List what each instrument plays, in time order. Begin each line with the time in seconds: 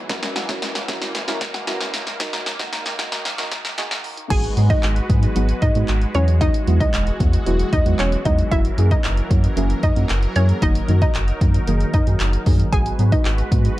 Already playing: supersaw synth E3
0.09 supersaw synth F#2 A#3, synth pluck F#3, synth stab C#4 E4 F#4 A#4, kick, snare, closed hi-hat
0.23 synth pluck C#4, snare, closed hi-hat
0.36 synth pluck F#5, snare, closed hi-hat
0.49 synth stab C#4 E4 F#4 A#4, kick, snare, closed hi-hat
0.62 synth pluck C#4, snare, closed hi-hat
0.75 synth pluck F#5, snare, closed hi-hat
0.88 synth pluck F#3, synth stab C#4 E4 F#4 A#4, kick, snare, closed hi-hat
1.01 synth pluck C#4, snare, closed hi-hat
1.15 snare, closed hi-hat
1.27 synth pluck F#3, synth stab C#4 E4 F#4 A#4, snare, closed hi-hat
1.41 synth pluck C#4, kick, snare, closed hi-hat
1.54 synth pluck F#5, snare, closed hi-hat
1.67 synth pluck F#3, synth stab C#4 E4 F#4 A#4, snare, closed hi-hat
1.80 synth pluck C#4, snare, closed hi-hat
1.94 snare, closed hi-hat
2.07 synth pluck F#3, snare, closed hi-hat
2.20 synth stab F#2 A#3 D#4 F#4 A#4, supersaw synth D#3, synth pluck D#4, kick, snare, closed hi-hat
2.33 synth pluck A#5, snare, closed hi-hat
2.46 synth pluck F#3, snare, closed hi-hat
2.59 synth stab F#2 A#3 D#4 F#4 A#4, kick, snare, closed hi-hat
2.73 synth pluck A#5, snare, closed hi-hat
2.86 snare, closed hi-hat
2.99 synth stab F#2 A#3 D#4 F#4 A#4, synth pluck D#4, kick, snare, closed hi-hat
3.12 synth pluck A#5, snare, closed hi-hat
3.25 synth pluck F#3, snare, closed hi-hat
3.38 synth stab F#2 A#3 D#4 F#4 A#4, synth pluck D#4, snare, closed hi-hat
3.51 synth pluck A#5, kick, snare, closed hi-hat
3.65 synth pluck F#3, snare, closed hi-hat
3.77 synth stab F#2 A#3 D#4 F#4 G#4, synth pluck D#4, snare, closed hi-hat
3.91 snare, closed hi-hat
4.04 synth pluck F#3, open hi-hat
4.17 synth pluck D#4, closed hi-hat
4.30 sub bass G#1, synth stab F#3 G#3 B3 D#4 F#4, supersaw synth F#4 B4, synth pluck G#4 G#5, kick, closed hi-hat, crash
4.44 closed hi-hat
4.56 sub bass G#2, synth stab F#3 G#3 B3 D#4 G#4, closed hi-hat
4.70 synth pluck D#4 D#5, kick, closed hi-hat
4.83 sub bass G#1, clap, closed hi-hat
4.96 closed hi-hat
5.09 sub bass G#2, synth stab F#3 G#3 B3 D#4 G#4, kick, closed hi-hat
5.23 closed hi-hat
5.35 sub bass G#1, synth stab F#3 G#3 B3 D#4 F#4, closed hi-hat
5.49 closed hi-hat
5.62 sub bass G#2, synth pluck D#4 D#5, kick, closed hi-hat
5.75 sub bass G#2, synth stab F#3 G#3 B3 D#4 F#4, closed hi-hat
5.88 sub bass G#1, clap, closed hi-hat
6.01 closed hi-hat
6.14 sub bass E2, supersaw synth E3 F#4, synth stab F#3 G#3 B3 E4 F#4, synth pluck C#4 C#5, closed hi-hat
6.28 closed hi-hat
6.41 synth pluck D#4 D#5, kick, closed hi-hat
6.54 closed hi-hat
6.67 sub bass E2, synth stab F#3 G#3 B3 E4 F#4, closed hi-hat
6.80 synth pluck D#4 D#5, kick, closed hi-hat
6.94 sub bass E1, clap, closed hi-hat
7.07 closed hi-hat
7.20 sub bass E2, synth stab F#3 G#3 B3 E4 F#4, kick, closed hi-hat
7.33 closed hi-hat
7.46 sub bass E1, synth stab F#3 G#3 B3 E4 F#4, closed hi-hat
7.59 closed hi-hat
7.73 sub bass E2, synth pluck D#4 D#5, kick, closed hi-hat
7.85 sub bass E2, synth stab F#3 G#3 B3 E4 F#4, closed hi-hat
7.99 sub bass E1, synth pluck C#4 C#5, clap, closed hi-hat
8.12 closed hi-hat
8.25 sub bass E2, synth stab F#3 G#3 B3 E4 F#4, synth pluck D#4 D#5, kick, closed hi-hat
8.38 closed hi-hat
8.51 sub bass F#1, synth stab F#3 A#3 C#4 E4 F#4, supersaw synth F#3 A#4, synth pluck E4 E5, kick, closed hi-hat
8.65 closed hi-hat
8.77 sub bass F#2, synth stab F#3 A#3 C#4 E4 G#4, closed hi-hat
8.91 synth pluck D#4 D#5, kick, closed hi-hat
9.04 sub bass F#1, clap, closed hi-hat
9.17 closed hi-hat
9.30 sub bass F#2, synth stab F#3 A#3 C#4 E4 F#4, kick, closed hi-hat
9.44 closed hi-hat
9.56 sub bass F#1, synth stab F#3 A#3 C#4 E4 G#4, closed hi-hat
9.70 closed hi-hat
9.83 sub bass F#2, synth pluck D#4 D#5, kick, closed hi-hat
9.96 sub bass F#2, synth stab F#3 A#3 C#4 E4 F#4, closed hi-hat
10.09 sub bass F#1, clap, closed hi-hat
10.23 closed hi-hat
10.36 sub bass F#2, synth stab F#3 A#3 C#4 E4 G#4, synth pluck C#4 C#5, closed hi-hat
10.49 closed hi-hat
10.62 sub bass F#1, synth stab D#3 F#3 A#3 D#4 F#4, synth pluck D#4 D#5, kick, closed hi-hat
10.75 closed hi-hat
10.88 sub bass F#2, synth stab D#3 F#3 A#3 D#4 F#4, closed hi-hat
11.02 synth pluck D#4 D#5, kick, closed hi-hat
11.15 sub bass F#1, clap, closed hi-hat
11.28 closed hi-hat
11.41 sub bass F#2, synth stab D#3 F#3 A#3 D#4 F#4, kick, closed hi-hat
11.54 closed hi-hat
11.67 sub bass F#1, synth stab D#3 F#3 A#3 D#4 G#4, closed hi-hat
11.80 closed hi-hat
11.94 sub bass F#2, synth pluck D#4 D#5, kick, closed hi-hat
12.06 sub bass F#2, synth stab D#3 F#3 A#3 D#4 G#4, closed hi-hat
12.20 sub bass F#1, clap, closed hi-hat
12.33 closed hi-hat
12.46 sub bass F#2, synth stab D#3 F#3 A#3 D#4 G#4, kick, open hi-hat
12.60 closed hi-hat
12.73 sub bass G#1, synth stab F#3 G#3 B3 D#4 F#4, supersaw synth G#3 F#4, synth pluck G#4 G#5, kick, closed hi-hat
12.86 closed hi-hat
12.99 sub bass G#2, synth stab F#3 G#3 B3 D#4 G#4, closed hi-hat
13.12 synth pluck D#4 D#5, kick, closed hi-hat
13.25 sub bass G#1, clap, closed hi-hat
13.38 closed hi-hat
13.51 sub bass G#2, synth stab F#3 G#3 B3 D#4 F#4, kick, closed hi-hat
13.65 closed hi-hat